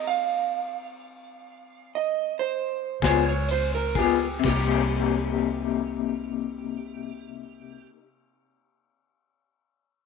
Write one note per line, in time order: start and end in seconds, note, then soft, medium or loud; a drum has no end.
0.00 0.44 A#5 medium
0.07 1.89 F5 loud
1.95 2.36 D#5 medium
2.39 3.03 C5 medium
3.02 4.40 C#2 medium
3.02 3.31 B3 soft
3.02 3.30 F4 medium
3.02 3.30 G#4 medium
3.02 3.26 C5 medium
3.02 3.28 C#5 loud
3.02 kick medium
3.02 snare loud
3.02 ride medium
3.29 3.50 C#5 medium
3.48 3.73 C5 medium
3.48 ride medium
3.75 3.96 A#4 medium
3.95 4.26 B3 soft
3.95 4.25 F4 medium
3.95 4.44 G4 medium
3.95 4.25 G#4 medium
3.95 kick medium
3.95 ride medium
4.39 7.84 C2 medium
4.39 7.89 C3 medium
4.43 7.96 A#3 medium
4.43 7.87 G4 loud
4.43 kick medium
4.43 crash medium
4.51 8.01 D#4 medium
4.56 8.06 G4 medium